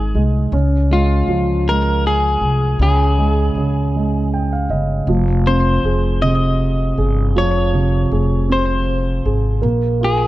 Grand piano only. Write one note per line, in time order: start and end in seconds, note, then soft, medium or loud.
0.00 0.15 G#3 soft
0.00 0.55 D#4 soft
0.15 0.52 G#3 soft
0.53 2.77 C#4 medium
0.91 1.67 G#3 soft
1.29 2.77 F3 soft
1.68 3.15 G#3 soft
2.81 3.56 C#3 medium
3.18 3.95 G#3 soft
3.57 4.69 C#3 soft
3.96 5.06 G#3 soft
4.34 4.51 G5 medium
4.53 4.70 F5 soft
4.70 5.07 C#3 soft
4.70 5.06 D#5 soft
5.09 7.32 F3 medium
5.47 6.94 C4 soft
5.85 6.97 G#4 soft
6.23 7.70 C3 soft
6.98 8.11 G#4 soft
7.36 9.60 F3 medium
7.74 9.22 C3 soft
8.12 9.24 G#4 soft
8.49 9.60 C4 soft
9.26 9.63 G#4 soft
9.62 10.27 A#3 medium
10.01 10.27 F4 soft